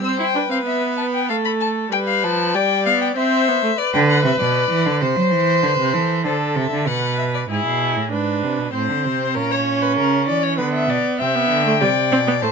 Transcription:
0.04 viola C4, violin C5 E6
0.19 viola E4, violin G5
0.35 viola D4, violin B4
0.50 viola C4, violin F5
0.66 viola B3, violin E5
0.97 violin A5
1.14 violin G5
1.29 viola A3, violin A4 F5
1.45 violin B5
1.61 violin A5
1.92 viola G3, violin B4 G5
2.08 violin F5
2.23 viola F3, violin A5
2.55 viola G3, violin D5 G5
2.86 viola B3, violin F5
3.01 violin G5
3.16 viola C4, violin C5 E5
3.48 viola B3
3.63 viola A3
3.78 violin B4 D5
3.94 cello D3, violin G5
4.10 violin F#5
4.25 cello C3, violin E5
4.40 cello B2, violin D5
4.71 cello E3
4.86 cello D3
5.01 cello C3, violin C5
5.16 cello F#3
5.31 cello E3
5.63 cello D3, violin B4
5.79 cello C3
5.94 cello E3, violin A4
6.25 cello D3, violin A4 C5
6.56 cello C3, violin E5
6.71 cello D3
6.87 cello B2, violin B4 F#5
7.19 violin E5
7.34 violin D5
7.50 cello G#2, viola E4, violin G#4
7.66 cello B2
7.97 cello A2
8.12 cello G#2, viola D4, violin B4
8.43 cello C3
8.59 cello B2
8.74 cello A2, viola C4, violin C5
8.89 cello D3
9.05 cello C3
9.35 cello A#2, viola C#4, violin A#4
9.51 violin C#5
9.82 violin B4
9.97 cello C#3, violin A#4
10.28 cello E3, violin D5
10.43 violin C#5
10.58 cello D3, viola B3, violin B4
10.74 violin E5
10.89 cello B2, violin D5
11.20 cello C3, viola C4, violin E5 G5
11.35 viola B3
11.50 cello D3
11.66 viola A3
11.81 cello C3, viola G3, violin D5
12.11 cello B2, viola C4
12.27 viola B3
12.42 cello A2, viola A3, violin C5 A5

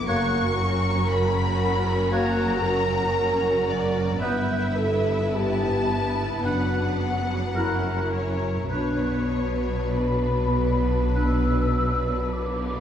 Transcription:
0.07 double bass section F#1, cello section F#2, viola section F#3 C#4, clarinet A#3, violin section F#4 A#4 C#6, french horn section A#4, oboe C#5, flute section F#6
0.57 french horn section A#4
1.10 violin section B5
2.11 clarinet A#3, french horn section F#4, oboe C#5, violin section A#5, flute section F#6
2.62 french horn section A#4
3.69 violin section D5
4.20 double bass section G1, cello section G2, viola section B3, clarinet B3, violin section E4 B4 E5, french horn section B4, oboe B4, flute section G6
4.77 french horn section A4
5.35 french horn section G4, violin section A5
5.89 french horn section E4
6.44 double bass section F#1, cello section F#2, viola section F#3, violin section D4 F#5, clarinet D4, french horn section F#4, oboe B4, flute section F#6
7.54 viola section C#4, violin section E4 A#4, clarinet E4, french horn section A#4, oboe A#4, flute section F#6
8.13 violin section C#5
8.70 double bass section B1, cello section B2, viola section F#3 B3, violin section D4 B4 C#5, clarinet D4, french horn section B4, oboe B4, flute section F#6
9.95 violin section B4, flute section B5
11.15 clarinet D4, oboe B4, flute section E6
12.33 flute section D6

